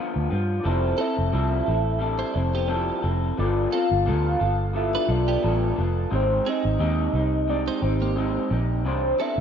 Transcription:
0.00 0.30 G2 medium
0.00 0.30 D3 medium
0.00 0.31 F3 medium
0.00 0.30 B3 medium
0.00 0.29 F4 medium
0.16 0.28 D2 medium
0.30 0.59 G2 medium
0.30 0.62 F3 medium
0.30 0.65 B3 medium
0.30 0.64 F4 medium
0.59 0.69 D5 medium
0.63 0.92 F1 loud
0.63 0.98 F3 medium
0.63 0.98 G3 medium
0.63 0.99 C4 medium
0.63 0.98 E4 medium
0.63 0.97 A4 medium
0.68 1.02 C5 loud
0.98 1.17 C4 medium
0.98 1.32 C4 soft
0.98 1.32 E4 medium
0.98 1.16 A4 medium
0.98 1.33 A4 medium
0.98 1.96 E5 loud
1.18 1.30 F1 medium
1.32 1.60 C2 loud
1.32 1.67 F3 medium
1.32 1.67 G3 medium
1.32 1.67 C4 medium
1.32 1.66 E4 medium
1.32 1.65 A4 medium
1.66 2.22 A1 medium
1.66 1.99 C4 soft
1.66 1.99 E4 soft
1.66 2.00 A4 medium
1.96 2.34 G3 medium
1.96 2.06 E5 medium
2.00 2.34 C4 medium
2.00 2.33 E4 medium
2.00 2.32 A4 medium
2.04 2.38 D5 loud
2.19 2.35 E4 medium
2.19 2.34 C5 medium
2.33 2.90 F1 medium
2.33 2.67 C4 soft
2.33 2.67 E4 medium
2.33 2.68 A4 medium
2.33 3.05 C5 medium
2.55 2.69 B3 medium
2.55 2.69 G4 medium
2.67 3.03 F3 medium
2.67 3.03 G3 medium
2.67 3.03 C4 medium
2.67 3.02 E4 medium
2.67 3.01 A4 medium
3.02 3.31 F1 loud
3.02 3.38 C4 soft
3.02 3.38 E4 medium
3.02 3.37 A4 medium
3.37 3.66 G1 loud
3.37 3.72 G3 medium
3.37 3.72 B3 medium
3.37 3.71 F4 medium
3.37 3.70 A4 medium
3.37 3.71 D5 loud
3.71 4.05 B3 soft
3.71 3.91 C4 medium
3.71 4.05 F4 medium
3.71 4.06 A4 medium
3.71 3.90 A4 medium
3.71 4.77 F5 loud
3.91 4.09 G1 loud
4.05 4.34 D2 medium
4.05 4.40 G3 medium
4.05 4.40 B3 medium
4.05 4.39 F4 medium
4.05 4.38 A4 medium
4.39 4.96 G1 medium
4.39 4.73 B3 soft
4.39 4.74 F4 medium
4.39 4.74 A4 medium
4.73 5.08 G3 medium
4.73 5.09 B3 medium
4.73 5.09 F4 medium
4.73 5.07 A4 medium
4.73 5.13 E5 loud
4.95 5.09 D4 medium
4.95 5.09 B4 medium
5.08 5.36 B1 medium
5.08 5.42 B3 soft
5.08 5.42 F4 medium
5.08 5.42 A4 medium
5.08 5.78 D5 loud
5.28 5.43 B3 medium
5.28 5.42 G4 medium
5.42 5.71 A1 loud
5.42 5.77 G3 medium
5.42 5.77 B3 medium
5.42 5.77 F4 medium
5.42 5.75 A4 medium
5.76 6.05 F1 medium
5.76 6.11 B3 soft
5.76 6.11 F4 medium
5.76 6.11 A4 medium
6.11 6.39 G#1 loud
6.11 6.45 G#3 medium
6.11 6.46 C4 medium
6.11 6.46 D#4 medium
6.11 6.44 G4 loud
6.15 6.50 C5 loud
6.45 6.79 C4 soft
6.45 6.65 C4 medium
6.45 6.79 D#4 medium
6.45 6.79 G4 medium
6.45 6.64 G#4 medium
6.45 7.49 D#5 loud
6.65 6.77 G#1 medium
6.79 7.07 D#2 loud
6.79 7.14 G#3 medium
6.79 7.14 C4 medium
6.79 7.14 D#4 medium
6.79 7.13 G4 medium
7.13 7.68 C2 medium
7.13 7.48 C4 soft
7.13 7.48 D#4 soft
7.13 7.48 G4 medium
7.48 7.82 G#3 medium
7.48 7.83 C4 medium
7.48 7.82 D#4 medium
7.48 7.81 G4 medium
7.48 7.84 D5 loud
7.68 7.82 D#4 medium
7.68 7.82 C5 medium
7.82 8.37 G#1 medium
7.82 8.16 C4 soft
7.82 8.16 D#4 medium
7.82 8.16 G4 medium
7.82 8.51 C5 medium
8.02 8.16 A#3 medium
8.02 8.16 G4 medium
8.16 8.51 G#3 medium
8.16 8.51 C4 medium
8.16 8.51 D#4 medium
8.16 8.49 G4 medium
8.51 8.85 A#1 medium
8.51 8.86 C4 soft
8.51 8.86 D#4 medium
8.51 8.85 G4 medium
8.85 9.12 C2 loud
8.85 9.19 C3 medium
8.85 9.19 E3 medium
8.85 9.19 D4 medium
8.85 9.18 G4 medium
8.85 9.22 C5 loud
9.19 9.40 B3 soft
9.19 9.38 C4 medium
9.19 9.40 D4 medium
9.19 9.40 G4 medium
9.19 9.37 A4 medium
9.19 9.40 E5 loud

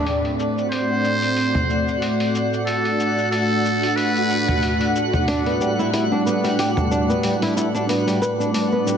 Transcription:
0.00 5.27 A2 medium
0.00 8.97 A3 medium
0.00 1.12 D4 medium
0.00 6.33 D5 medium
0.06 8.97 F#4 medium
0.06 8.97 F#5 medium
0.06 open hi-hat medium
0.06 cabasa soft
0.19 2.67 C4 medium
0.25 open hi-hat soft
0.39 cabasa medium
0.58 cabasa soft
0.71 1.98 C5 loud
0.71 open hi-hat medium
0.71 cabasa soft
1.04 cabasa medium
1.22 open hi-hat soft
1.22 cabasa soft
1.37 open hi-hat medium
1.37 cabasa soft
1.55 mid tom medium
1.55 cabasa soft
1.70 cabasa medium
1.88 cabasa soft
2.02 open hi-hat medium
2.02 cabasa soft
2.20 open hi-hat soft
2.35 cabasa medium
2.53 cabasa soft
2.66 3.28 A4 medium
2.66 open hi-hat soft
2.66 cabasa soft
2.82 8.97 D4 medium
2.82 7.89 F#5 medium
2.82 open hi-hat soft
3.00 cabasa medium
3.19 cabasa soft
3.32 3.97 A4 medium
3.32 open hi-hat medium
3.32 cabasa soft
3.66 cabasa medium
3.83 open hi-hat soft
3.83 cabasa soft
3.96 4.95 B4 loud
3.96 open hi-hat medium
3.96 cabasa soft
4.16 cabasa soft
4.30 cabasa medium
4.48 mid tom medium
4.48 cabasa soft
4.63 open hi-hat medium
4.63 cabasa soft
4.81 open hi-hat soft
4.96 cabasa medium
5.13 mid tom medium
5.13 cabasa soft
5.28 8.97 A2 medium
5.28 5.45 D4 medium
5.28 open hi-hat medium
5.28 cabasa soft
5.46 8.82 G3 medium
5.46 5.59 B3 medium
5.46 open hi-hat soft
5.61 5.71 G3 medium
5.61 cabasa medium
5.79 5.92 E4 medium
5.79 cabasa soft
5.93 6.04 E4 medium
5.93 open hi-hat medium
5.93 cabasa soft
6.12 6.25 D4 medium
6.26 6.43 B3 medium
6.26 cabasa medium
6.44 6.57 G3 medium
6.44 open hi-hat soft
6.44 cabasa soft
6.59 6.69 G4 medium
6.59 open hi-hat medium
6.59 cabasa soft
6.77 6.90 D4 medium
6.77 mid tom medium
6.77 cabasa soft
6.91 7.09 D4 medium
6.91 cabasa medium
7.10 7.22 B3 medium
7.10 cabasa soft
7.23 7.34 G3 medium
7.23 open hi-hat medium
7.23 cabasa soft
7.42 7.55 E4 medium
7.42 open hi-hat soft
7.57 7.67 E4 medium
7.57 cabasa medium
7.75 7.88 D4 medium
7.75 cabasa soft
7.89 8.06 B3 medium
7.89 open hi-hat medium
7.89 cabasa soft
8.07 8.20 G3 medium
8.07 open hi-hat soft
8.07 cabasa soft
8.22 8.32 B4 medium
8.22 cabasa medium
8.29 8.97 D5 medium
8.40 8.53 D4 medium
8.40 cabasa soft
8.54 8.71 D4 medium
8.54 open hi-hat medium
8.54 cabasa soft
8.72 8.85 B3 medium
8.86 8.97 G3 medium
8.86 cabasa medium

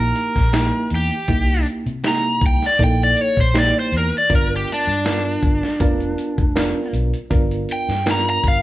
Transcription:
0.00 0.11 A#1 medium
0.00 0.39 A#3 medium
0.00 0.39 D#4 medium
0.00 0.39 E4 medium
0.00 0.39 G4 medium
0.00 0.90 A#4 medium
0.16 closed hi-hat medium
0.36 0.69 A#1 medium
0.36 kick medium
0.36 snare soft
0.53 1.14 A#3 medium
0.53 1.15 D#4 medium
0.53 1.14 E4 medium
0.53 1.14 G4 medium
0.53 snare loud
0.53 closed hi-hat medium
0.90 1.09 E2 medium
0.90 closed hi-hat medium
0.95 1.66 G4 medium
1.11 closed hi-hat soft
1.28 1.62 C2 medium
1.28 1.89 A#3 medium
1.28 1.90 D#4 medium
1.28 1.90 E4 medium
1.28 1.90 G4 medium
1.28 kick loud
1.28 closed hi-hat medium
1.48 closed hi-hat soft
1.66 closed hi-hat medium
1.86 2.35 C3 medium
1.86 closed hi-hat soft
2.04 2.65 A#3 medium
2.04 2.65 D#4 medium
2.04 2.65 E4 medium
2.04 2.65 G4 medium
2.04 snare loud
2.04 closed hi-hat medium
2.08 2.42 A#5 medium
2.41 2.59 C2 medium
2.41 kick medium
2.41 closed hi-hat medium
2.46 2.63 G5 medium
2.62 snare soft
2.66 2.81 D5 medium
2.79 3.12 A#1 medium
2.79 3.40 A#3 medium
2.79 3.40 D#4 medium
2.79 3.40 E4 medium
2.79 3.40 A4 medium
2.79 kick medium
2.79 closed hi-hat medium
2.84 3.01 G5 medium
3.03 3.21 D5 medium
3.17 closed hi-hat medium
3.21 3.38 C#5 medium
3.37 3.70 A#1 medium
3.37 3.56 C5 medium
3.37 kick medium
3.54 4.15 A#3 medium
3.54 4.15 D#4 medium
3.54 4.15 E4 medium
3.54 4.16 G4 medium
3.54 snare loud
3.54 closed hi-hat medium
3.59 3.76 D5 medium
3.79 3.94 C5 medium
3.92 4.10 E2 medium
3.92 closed hi-hat medium
3.97 4.14 A#4 medium
4.18 4.32 D5 medium
4.30 4.63 G1 medium
4.30 4.91 B3 medium
4.30 4.91 D4 medium
4.30 4.91 F4 medium
4.30 4.91 A#4 medium
4.30 kick loud
4.30 closed hi-hat medium
4.35 4.52 A#4 medium
4.56 4.70 G4 medium
4.68 closed hi-hat soft
4.73 6.92 D4 medium
4.87 5.36 G2 medium
4.87 closed hi-hat soft
5.05 5.66 B3 medium
5.05 5.66 D4 medium
5.05 5.66 F4 medium
5.05 5.66 A#4 medium
5.05 snare loud
5.05 closed hi-hat medium
5.25 closed hi-hat soft
5.43 5.60 G1 medium
5.43 kick medium
5.43 closed hi-hat medium
5.63 snare soft
5.80 6.13 F1 medium
5.80 6.42 B3 medium
5.80 6.42 D4 medium
5.80 6.41 F4 medium
5.80 6.42 A#4 loud
5.80 kick medium
5.80 closed hi-hat medium
6.00 closed hi-hat soft
6.18 closed hi-hat medium
6.38 6.71 F1 medium
6.38 kick medium
6.56 7.17 B3 medium
6.56 7.17 D4 medium
6.56 7.17 F4 medium
6.56 7.17 A#4 loud
6.56 snare loud
6.56 closed hi-hat medium
6.93 7.11 B1 medium
6.93 closed hi-hat medium
7.14 closed hi-hat soft
7.30 7.64 G1 medium
7.30 7.92 B3 medium
7.30 7.92 D4 medium
7.30 7.92 F4 medium
7.30 7.92 A#4 medium
7.30 kick loud
7.30 closed hi-hat medium
7.51 closed hi-hat soft
7.69 8.07 G5 loud
7.69 closed hi-hat medium
7.89 8.37 G2 medium
7.89 snare soft
7.89 closed hi-hat soft
8.06 8.62 B3 medium
8.06 8.62 D4 medium
8.06 8.62 F4 medium
8.06 8.62 A#4 medium
8.06 snare loud
8.06 closed hi-hat medium
8.11 8.28 A#5 medium
8.30 8.45 A#5 medium
8.44 8.62 G1 medium
8.44 kick medium
8.44 closed hi-hat medium
8.48 8.62 F5 medium

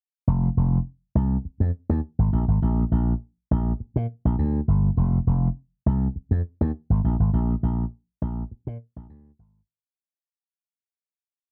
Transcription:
0.27 0.48 F1 loud
0.57 0.78 F1 loud
1.15 1.36 C2 medium
1.45 muted slap bass stroke soft
1.60 1.70 F2 medium
1.89 1.99 D#2 medium
2.19 2.29 G#1 medium
2.33 2.44 A#1 loud
2.48 2.58 G#1 medium
2.62 2.83 A#1 loud
2.92 3.12 A#1 loud
3.51 3.72 A#1 medium
3.80 muted slap bass stroke soft
3.96 4.05 A#2 loud
4.25 4.35 A#1 medium
4.39 4.60 D2 medium
4.68 4.89 G1 loud
4.97 5.18 F1 loud
5.27 5.48 F1 medium
5.86 6.07 C2 medium
6.16 muted slap bass stroke soft
6.31 6.41 F2 medium
6.61 6.70 D#2 medium
6.90 7.00 G#1 medium
7.04 7.15 A#1 medium
7.20 7.29 G#1 medium
7.33 7.54 A#1 loud
7.63 7.84 A#1 loud
8.22 8.42 A#1 medium
8.51 muted slap bass stroke soft
8.67 8.76 A#2 medium
8.96 9.06 A#1 medium
9.10 9.30 D2 medium
9.39 9.60 G#1 medium

